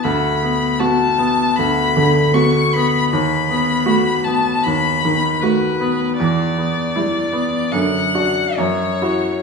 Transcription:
X:1
M:4/4
L:1/8
Q:1/4=78
K:Bm
V:1 name="Violin"
b2 a2 b2 c' b | b3 a b2 B2 | d4 f2 c2 |]
V:2 name="Grand piano"
D,, B, F B, D,, D, F B, | ^D,, B, F B, D,, ^D, F B, | E,, B, E B, F,, [DF] F,, [EF] |]
V:3 name="Cello"
z2 B,2 z2 B,2 | z2 A,2 z2 A,2 | z2 G,2 D,2 E,2 |]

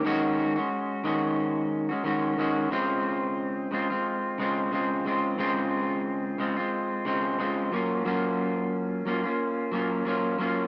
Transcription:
X:1
M:4/4
L:1/16
Q:"Swing 16ths" 1/4=90
K:Db
V:1 name="Clean electric guitar"
[E,A,DG]3 [A,DG]3 [E,A,DG]4- [E,A,DG] [A,DG] [E,A,DG]2 [E,A,DG]2 | [D,A,CF]6 [D,A,CF] [A,CF]3 [D,A,CF]2 [D,A,CF]2 [D,A,CF]2 | [D,A,CF]6 [D,A,CF] [A,CF]3 [D,A,CF]2 [D,A,CF]2 [G,B,DF]2 | [G,B,DF]6 [G,B,DF] [B,DF]3 [G,B,DF]2 [G,B,DF]2 [G,B,DF]2 |]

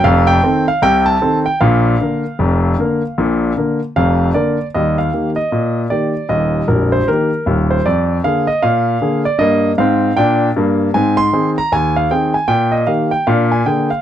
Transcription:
X:1
M:2/4
L:1/16
Q:"Swing 16ths" 1/4=77
K:Eb
V:1 name="Grand piano"
f g2 f g =a2 g | f8- | f4 f2 d2 | e f2 e3 d2 |
e2 B c B3 c | d2 f e f3 d | e2 f2 g2 z2 | a c'2 b a f g a |
g e f g f a g f |]
V:2 name="Grand piano" clef=bass
[F,,,F,,]2 [E,C=A]2 [C,,C,]2 [E,CA]2 | [B,,,B,,]2 [D,B,B]2 [F,,,F,,]2 [D,B,B]2 | [B,,,B,,]2 [D,B,B]2 [F,,,F,,]2 [D,B,B]2 | [E,,G,]2 [E,B,G]2 B,,2 [E,B,G]2 |
[E,,,E,,]2 [B,,,,B,,,]2 [E,B,G]2 [E,,,E,,]2 | F,,2 [D,B,A]2 B,,2 [D,B,A]2 | [G,,B,]2 [A,,C]2 [B,,D]2 [G,,B,]2 | [A,,C]2 [E,CA]2 E,,2 [E,CA]2 |
B,,2 [E,B,G]2 [B,,D]2 [D,B,A]2 |]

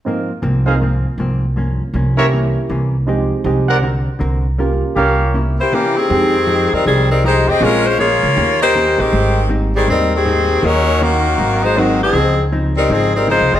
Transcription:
X:1
M:4/4
L:1/8
Q:"Swing" 1/4=159
K:Fm
V:1 name="Trumpet section"
z3 [ABcf] z4 | z3 [Bcd=e] z4 | z3 [Bc=d_g] z4 | z2 [GBdf]2 z4 |
z8 | z8 | z8 | z8 |
z8 |]
V:2 name="Saxophone section"
z8 | z8 | z8 | z4 z [B,=EGc] [=E,B,DG] [_E,CGA]- |
[E,CGA]3 [G,CEB] [E,G,CA] [G,CEB] [A,EGc] [CGAe] | [A,DFB] [A,DFc] [B,FAd]3 [B,EGc]2 [E,A,CG]- | [E,A,CG]2 z [E,G,CA] [G,CEB] [E,CGA]3 | [_G,DEB]2 [E,B,D_G]3 [A,EGc] [E,A,CG] [F,CEA]- |
[F,CEA]2 z [G,CEB] [F,CEA] [G,CEB] [A,EFc] [CFAe] |]
V:3 name="Grand piano"
[CEFB] z2 [CEFB] z4 | z3 [B,D=EG]3 z2 | [A,CEG]2 [A,CEG]2 z4 | [B,DFG]2 [B,DFB]2 z4 |
[A,CEG] z6 z | [A,CDF] z6 z | z8 | z6 [_G,B,CE] z |
z8 |]
V:4 name="Hollow-body jazz guitar"
[A,,F,B,C] z [A,,F,B,C] z [A,,F,B,C] z [A,,F,B,C] z | [G,,F,B,D] z [G,,F,B,D] z [C,=E,B,D] z [C,E,B,D] z | [F,A,EG] z [F,A,EG] z [=D,C^FB] z [D,CFB] z | [G,DFB] z [G,DFB] z [C,B,D=E] z [C,B,DE] z |
[F,A,EG] z [F,A,EG] z [F,A,EG] z [F,A,EG] z | [B,,F,A,D] z [B,,F,A,D] z [E,B,DG] z [E,B,DG] z | [A,,G,CE] z [A,,G,CE] z [A,,G,CE] z [A,,G,CE] z | [E,B,D_G] z [E,B,DG] z [A,,_G,CE] z [A,,G,CE] z |
[D,F,CE] z [D,F,CE] z [D,F,CE] z [D,F,CE] z |]
V:5 name="Upright bass" clef=bass
z2 C,,3 z C,,2- | C,, z C,,3 z C,,2- | C,, z C,,3 z C,,2- | C,, z C,,3 z3 |
F,,3 =E,, C,,3 F,, | B,,,3 D,, E,,3 B,,, | A,,,4 E,,4 | E,,4 A,,,4 |
D,,4 A,,,2- (3A,,, C,, _G,,, |]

